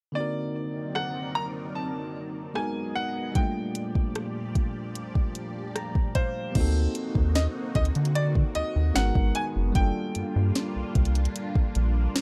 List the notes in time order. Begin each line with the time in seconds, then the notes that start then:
0.12 D3 F#3 A#3 C4 D#4 A#4 D5
0.17 D#4 F#4 A#4
0.95 F#5, cross-stick
1.35 A#5
1.75 A5
2.54 G#3 B3 D#4 F#4 G#4 D#5 G#5, cross-stick
2.58 A#4
2.95 F#5
3.32 A#2 F3 G3 A#3 G4 D5 G5, kick, closed hi-hat
3.36 D4 F4
3.40 A3
3.75 closed hi-hat
3.95 kick
4.15 cross-stick, closed hi-hat
4.55 kick, closed hi-hat
4.95 closed hi-hat
5.15 kick
5.35 closed hi-hat
5.76 A#5, cross-stick, closed hi-hat
5.95 kick
6.15 C5 F5, kick, closed hi-hat
6.52 D2 A#3 C4 D#4 F#4, kick, closed hi-hat, crash
6.56 D#4 F#4
6.60 A4
6.95 closed hi-hat
7.15 D#2, kick
7.35 D#5, snare, closed hi-hat
7.75 D2 D#5, kick, closed hi-hat
7.85 closed hi-hat
7.95 D3, closed hi-hat
8.05 closed hi-hat
8.15 D5, closed hi-hat
8.35 kick
8.55 D#2 D#5, closed hi-hat
8.76 D#2
8.94 G#1 D#3 G#3 B3 D#4 F#4 F#5, snare, closed hi-hat
8.98 A#4
9.15 G#1, kick
9.35 G#5, closed hi-hat
9.56 F#1
9.72 G1 G3 A#3 D4 F4 G5, kick, closed hi-hat
9.76 D4 F4
9.80 A4
10.15 G2, closed hi-hat
10.36 G2
10.55 snare, closed hi-hat
10.76 C2
10.95 C2, kick, closed hi-hat
11.05 closed hi-hat
11.15 closed hi-hat
11.25 closed hi-hat
11.36 closed hi-hat
11.55 kick
11.75 A#1, closed hi-hat
12.16 snare, closed hi-hat